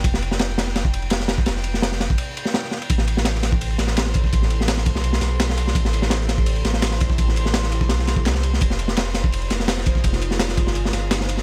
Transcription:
<<
  \new Staff \with { instrumentName = "Synth texture" } { \time 4/4 \key a \minor \tempo 4 = 168 g''1~ | g''1 | c'''1~ | c'''1~ |
c'''1~ | c'''1~ | c'''1~ | c'''1 | }
  \new Staff \with { instrumentName = "Ambient pad" } { \time 4/4 \key a \minor << { r1 | r1 | c''1~ | c''1~ |
c''1~ | c''1~ | c''1~ | c''1 | } \\ { r1 | r1 | <e' g' a'>1~ | <e' g' a'>1~ |
<e' g' a'>1~ | <e' g' a'>1 | <ees' f' aes'>1~ | <ees' f' aes'>1 | } >> }
  \new Staff \with { instrumentName = "Sub bass" } { \clef bass \time 4/4 \key a \minor f,,2~ f,,8 f,,4~ f,,16 r16 | f,,4.~ f,,16 g,,16 r2 | a,,2~ a,,8 a,,4~ a,,16 r16 | a,,4.~ a,,16 b,,8. b,,4. |
a,,2~ a,,8 a,,4~ a,,16 r16 | a,,4.~ a,,16 b,,4~ b,,16 c,4 | f,,2~ f,,8 f,,4~ f,,16 r16 | f,,4.~ f,,16 g,,8. g,,4. | }
  \new DrumStaff \with { instrumentName = "Drums" } \drummode { \time 4/4 <bd cymr>16 sn16 cymr16 sn16 <cymr sn>16 sn16 <cymr sn>16 sn16 <cymr sn>16 bd16 cymr16 cymr16 <cymr sn>16 sn16 <cymr sn>16 bd16 | <cymr sn>16 sn16 cymr16 sn16 <cymr sn>16 sn16 <cymr sn>16 bd16 cymr8 cymr16 sn16 <cymr sn>16 sn16 sn16 cymr16 | <hh bd cymr>16 sn16 <hh cymr>16 sn16 <hh cymr sn>16 sn16 <hh cymr sn>16 bd16 <hho cymr>16 cymr16 <hh cymr sn>16 sn16 <hh cymr sn>16 sn16 <hh bd cymr>16 <bd sn>16 | <hh bd cymr>16 sn16 <hh cymr>16 sn16 <hh cymr sn>16 <hh sn>16 <hh bd cymr>16 sn16 <hh cymr>16 sn16 <hh cymr sn>8 <hh cymr sn>16 sn16 <hh cymr>16 sn16 |
<hh bd cymr>16 sn16 <hh cymr>16 sn16 <hh cymr sn>16 sn16 <hh cymr sn>16 bd16 <hho cymr>16 cymr16 <hh cymr sn>16 sn16 <hh cymr sn>16 sn16 <hh bd cymr>16 <bd sn>16 | <hh bd cymr>16 sn16 <hh cymr>16 sn16 <hh cymr sn>16 <hh sn>16 <hh cymr>16 <bd sn>16 <hh cymr sn>16 sn16 <hh cymr sn>16 bd16 <hh cymr sn>16 sn16 <hh cymr>16 sn16 | <hh bd cymr>16 sn16 <hh cymr>16 sn16 <hh cymr sn>16 sn16 <hh cymr sn>16 bd16 <hho cymr>16 cymr16 <hh cymr sn>16 sn16 <hh cymr sn>16 sn16 <hh bd cymr>16 <bd sn>16 | <hh bd cymr>16 sn16 <hh cymr>16 sn16 <hh cymr sn>16 <hh sn>16 <hh bd cymr>16 sn16 <hh cymr>16 sn16 <hh cymr sn>8 <hh cymr sn>16 sn16 <hh cymr>16 sn16 | }
>>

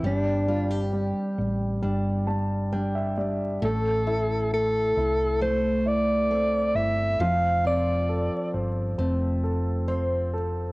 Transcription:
<<
  \new Staff \with { instrumentName = "Alto saxophone" } { \time 4/4 \key a \minor \tempo 4 = 67 d'4 r2. | a'4 a'4 c''8 d''4 e''8 | f''8 d''4 r2 r8 | }
  \new Staff \with { instrumentName = "Grand piano" } { \time 4/4 \key a \minor r2 r8 a''8 g''16 e''16 d''8 | r1 | r1 | }
  \new Staff \with { instrumentName = "Grand piano" } { \time 4/4 \key a \minor g8 g8 g8 g8 g8 g8 g8 g8 | a8 e'8 a8 e'8 a8 e'8 a8 e'8 | f8 c'8 a'8 c''8 c'8 a'8 c''8 a'8 | }
  \new Staff \with { instrumentName = "Steel-string acoustic guitar" } { \time 4/4 \key a \minor g8 f'16 g'4~ g'16 d'4 d'4 | a,8 e'4. a4 c'4 | f8 f'4. a4 c'4 | }
  \new Staff \with { instrumentName = "Fingered electric bass" } { \clef bass \time 4/4 \key a \minor g,,4~ g,,16 r16 a,,8 g,,2 | a,,4. c,2 g,,8 | f,,4~ f,,16 r16 g,,8 f,,2 | }
>>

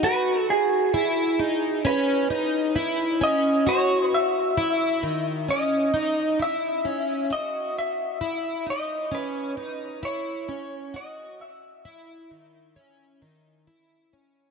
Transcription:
<<
  \new Staff \with { instrumentName = "Electric slide guitar" } { \time 4/4 \key cis \minor \tempo 4 = 66 b'8 gis'4. b'4. dis''8 | cis''8 e''4. dis''4 e''4 | dis''8 e''4 dis''8 b'4 cis''4 | dis''8 e''2. r8 | }
  \new Staff \with { instrumentName = "Twelve-string acoustic guitar" } { \time 4/4 \key cis \minor fis'4 e'8 dis'8 cis'8 dis'8 e'8 cis'8 | fis'4 e'8 dis8 cis'8 dis'8 e'8 cis'8 | fis'4 e'8 dis'8 cis'8 dis'8 e'8 cis'8 | fis'4 e'8 dis8 cis'8 dis8 e'8 cis'8 | }
>>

